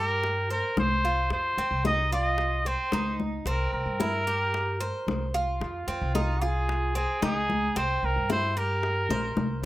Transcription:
Already playing: upright bass G2, cuban tres G4, trumpet A#4
0.24 high bongo, high conga
0.50 trumpet A#4, cuban tres C5, high bongo, high conga
0.77 upright bass C2, trumpet C5, high bongo, low bongo, high conga
1.04 cuban tres F4, high bongo
1.30 upright bass F2, trumpet C5, high bongo, high conga
1.57 upright bass F2, cuban tres C4, high bongo, high conga
1.71 upright bass C2
1.85 cuban tres D#4, trumpet D#5, high bongo, high conga
2.11 cuban tres F4, trumpet D#5, high bongo, high conga
2.38 high bongo, high conga
2.65 cuban tres C4, trumpet C5, high bongo, high conga
2.92 upright bass C#2, cuban tres D#4, high bongo, low bongo, high conga
3.20 high conga
3.45 upright bass C2, cuban tres C4, trumpet A#4, high bongo, high conga
3.73 upright bass C2, trumpet A#4, high conga
3.86 upright bass G2
4.00 cuban tres E4, high bongo, high conga
4.27 cuban tres G4, high bongo, high conga
4.54 high bongo, high conga
4.80 cuban tres C5, high bongo, high conga
5.07 upright bass C2, high bongo, low bongo, high conga
5.34 cuban tres F4, high bongo, high conga
5.61 upright bass F2, trumpet F4, high bongo, high conga
5.87 upright bass F2, cuban tres C4, high bongo, high conga
6.02 upright bass C2
6.15 cuban tres D#4, high bongo, high conga
6.42 cuban tres F4, trumpet G#4, high bongo, high conga
6.69 high bongo, high conga
6.95 cuban tres C4, trumpet G#4, high bongo, high conga
7.22 upright bass C#2, cuban tres D#4, trumpet G#4, high bongo, low bongo, high conga
7.50 high conga
7.76 upright bass C2, cuban tres C4, trumpet C5, high bongo, high conga
8.03 upright bass C2, trumpet A#4, high conga
8.16 upright bass G2
8.30 cuban tres E4, trumpet C5, high bongo, high conga
8.57 cuban tres G4, trumpet A#4, high bongo, high conga
8.83 high bongo, high conga
9.09 upright bass A#1, cuban tres C5, high bongo, high conga
9.37 upright bass C2, low bongo, high conga

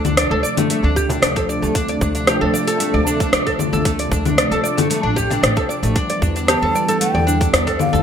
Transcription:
Already playing: upright bass D2, analog synth pad C3 F3 A3 D4
0.05 oud D4, open hi-hat, low conga, cabasa
0.17 oud D5, cross-stick, open hi-hat, cabasa
0.31 upright bass D2, oud A4
0.43 oud D5, cabasa
0.57 oud A3, open hi-hat, low conga, cabasa
0.70 oud A3, open hi-hat, cabasa
0.83 upright bass D2, oud D4
0.96 oud G4, kick, cabasa
1.09 oud D4, open hi-hat, frame drum, cabasa
1.22 upright bass D2, oud D5, cross-stick, open hi-hat, cabasa
1.36 oud A4, kick, open hi-hat
1.49 oud D5, cabasa
1.62 upright bass D2, oud A3, cabasa
1.75 oud D4, kick, open hi-hat, cabasa
1.89 oud D5, open hi-hat
2.01 upright bass D2, oud D4, kick, cabasa
2.15 oud D4, open hi-hat, cabasa
2.27 oud G4, cross-stick, open hi-hat, cabasa
2.41 upright bass D2, oud A4
2.54 oud D5, cabasa
2.67 oud A4, open hi-hat, cabasa
2.80 oud A3, open hi-hat, cabasa
2.94 upright bass D2, oud D5
3.07 oud D4, cabasa
3.20 oud D4, kick, open hi-hat, cabasa
3.32 upright bass D2, oud D5, cross-stick, open hi-hat, cabasa
3.47 oud A4, kick, open hi-hat
3.59 oud D5, low conga, cabasa
3.73 upright bass D2, oud A4, low conga, cabasa
3.85 oud A3, kick, open hi-hat, cabasa
3.99 oud D5, open hi-hat
4.12 upright bass D2, oud D4, kick, cabasa
4.25 oud D4, open hi-hat, low conga, cabasa
4.38 oud D5, cross-stick, open hi-hat, cabasa
4.51 upright bass D2, oud A4, open hi-hat
4.64 oud D5, cabasa
4.78 oud A3, open hi-hat, low conga, cabasa
4.90 oud A3, open hi-hat, cabasa
5.03 upright bass A1, oud D4
5.16 oud G4, kick, cabasa
5.30 oud D4, open hi-hat, frame drum, cabasa
5.43 upright bass A1, oud D5, cross-stick, open hi-hat, cabasa
5.57 oud A4, kick, open hi-hat
5.69 oud D5, cabasa
5.83 upright bass A1, oud A3, open hi-hat, cabasa
5.96 analog synth pad D3 E3 G3 B3, oud D4, kick, open hi-hat, cabasa
6.10 oud D5, open hi-hat
6.22 upright bass E2, oud D4, kick, cabasa
6.36 oud D4, open hi-hat, cabasa
6.47 oud G4, ney A5, cross-stick, open hi-hat, cabasa
6.62 upright bass E2, oud A4
6.75 oud D5, cabasa
6.88 oud A4, open hi-hat, cabasa
7.00 oud A3, ney G5, open hi-hat, cabasa
7.15 upright bass E2, oud D5
7.27 oud D4, cabasa
7.41 oud D4, kick, open hi-hat, cabasa
7.53 upright bass E2, oud D5, cross-stick, open hi-hat, cabasa
7.67 oud A4, kick, open hi-hat
7.79 oud D5, ney F5, low conga, cabasa
7.93 upright bass E2, oud A4, low conga, cabasa

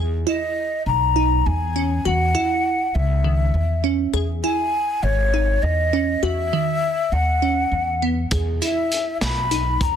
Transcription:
Already playing: upright bass E2, synth arpeggio sound G#4
0.27 synth arpeggio sound E4, flute D#5
0.86 upright bass B1, flute A#5
1.16 synth arpeggio sound D#4
1.46 upright bass E2, flute G#5
1.76 synth arpeggio sound C#4
2.05 upright bass E2, synth arpeggio sound F#4, flute F#5
2.35 synth arpeggio sound E4
2.94 upright bass C#2, flute E5
3.24 synth arpeggio sound D#3
3.54 upright bass E2
3.84 synth arpeggio sound C#4
4.13 upright bass E2, synth arpeggio sound G#4
4.44 synth arpeggio sound E4, flute G#5
5.03 upright bass G#1, flute C#5
5.34 synth arpeggio sound D#4
5.62 upright bass E2, flute D#5
5.93 synth arpeggio sound C#4
6.23 upright bass E2, synth arpeggio sound F#4, flute E5
6.53 synth arpeggio sound D#3
7.12 upright bass D#2, flute F#5
7.42 synth arpeggio sound C#4
7.72 upright bass E2
8.02 synth arpeggio sound B3
8.31 upright bass E2, synth arpeggio sound G#4, kick, closed hi-hat
8.62 synth arpeggio sound E4, flute E5, closed hi-hat
8.92 closed hi-hat
9.21 upright bass B1, flute B5, snare, closed hi-hat
9.51 synth arpeggio sound D#4, closed hi-hat
9.81 upright bass E2, flute A#5, kick, closed hi-hat

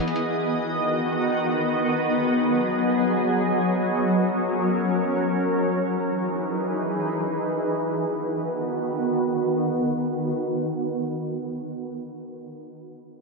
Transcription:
Already playing: ambient pad D#5
0.00 ambient pad D#3 B3 F#4
0.08 closed hi-hat
0.16 closed hi-hat
1.95 ambient pad F#3 G#4
3.90 ambient pad C#4 A#4 C#5
5.85 ambient pad E3 D#4 G#4 B4
7.80 ambient pad D#3 B3 F#4 B4

